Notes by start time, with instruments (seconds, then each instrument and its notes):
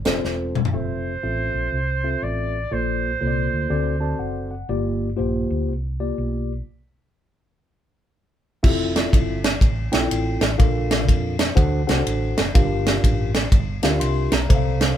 0.05 fingered electric bass F1, tine electric piano C4 F4 A4 C5, snare, closed hi-hat
0.24 fingered electric bass E1, snare
0.55 mid tom
0.65 floor tom
0.73 fingered electric bass F1, tine electric piano C4 F4 A4 E5, trumpet C5
1.23 fingered electric bass A1, tine electric piano C4 F4 A4 E5
1.54 fingered electric bass A#1
1.72 fingered electric bass C2
2.04 tine electric piano C4 F4 A4 E5
2.22 fingered electric bass A1, trumpet D5
2.71 fingered electric bass A#1, tine electric piano A#2 A#3 F4 A4 D5, trumpet C5
3.21 fingered electric bass C2, tine electric piano A#3 F4 A4 C#5
3.27 tine electric piano D5
3.53 fingered electric bass D2
3.70 fingered electric bass D2, tine electric piano D3 C4 F#4 A4 D5
4.00 tine electric piano C4 F#4 A4 D5 A5
4.19 fingered electric bass F#1, tine electric piano F#5
4.51 tine electric piano F#5
4.69 fingered electric bass G1, tine electric piano G2 A#3 F4 G4 D5
5.17 fingered electric bass A#1, tine electric piano A#3 F4 G4 C5
5.50 fingered electric bass D2
5.69 fingered electric bass C2
6.00 tine electric piano A#3 F4 G4 D5
6.18 fingered electric bass B1
8.63 fingered electric bass F1, tine electric piano C4 E4 F4 G4 E5, kick, crash
8.69 tine electric piano A4
8.96 snare, ride bell
9.13 fingered electric bass G1, kick, ride bell
9.44 snare, ride bell
9.61 fingered electric bass A1, kick, ride bell
9.92 fingered electric bass A#1, tine electric piano C4 E4 F4 A4 G5, snare, ride bell
10.11 fingered electric bass A1, ride bell
10.41 fingered electric bass A1, snare, ride bell
10.58 fingered electric bass A#1, tine electric piano A#2 D4 F4 A4 A#4 F5, kick, ride bell
10.91 snare, ride bell
11.09 fingered electric bass F2, kick, ride bell
11.39 snare, ride bell
11.55 fingered electric bass D2, tine electric piano D3 D4 F#4 A4 C5 F#5, kick, ride bell
11.87 fingered electric bass C2, tine electric piano D4 F#4 A4 C5 F#5, snare, ride bell
12.07 fingered electric bass A1, ride bell
12.38 fingered electric bass F#1, snare, ride bell
12.54 fingered electric bass G1, tine electric piano G2 D4 F4 G4 A#4 F5, kick, ride bell
12.86 snare, ride bell
13.04 fingered electric bass A1, kick, ride bell
13.35 snare, ride bell
13.52 fingered electric bass G1, kick, ride bell
13.82 fingered electric bass D2, tine electric piano D4 F4 G4 A4 F5, snare, ride bell
13.88 tine electric piano A#4
14.00 fingered electric bass C2, tine electric piano E5 C6, ride bell
14.32 fingered electric bass B1, tine electric piano D5 A#5, snare, ride bell
14.49 fingered electric bass C2, tine electric piano C3 A4 C5 E5, kick, ride bell
14.55 tine electric piano F5
14.81 snare, ride bell